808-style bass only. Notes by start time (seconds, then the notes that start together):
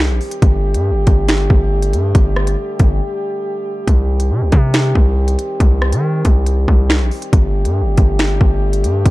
Already playing: C2
0.10 A#1
0.42 G1
0.75 G2
0.91 G1
1.07 G1
1.50 G1
1.93 G2
2.15 G1
2.80 G1
3.88 C2
4.31 C3
4.42 C2
4.52 C3
4.95 C2
5.60 C2
5.93 D#3
6.25 C2
6.68 C2
7.00 A#1
7.33 G1
7.65 G2
7.81 G1
7.98 G1
8.41 G1
8.84 G2
9.06 G1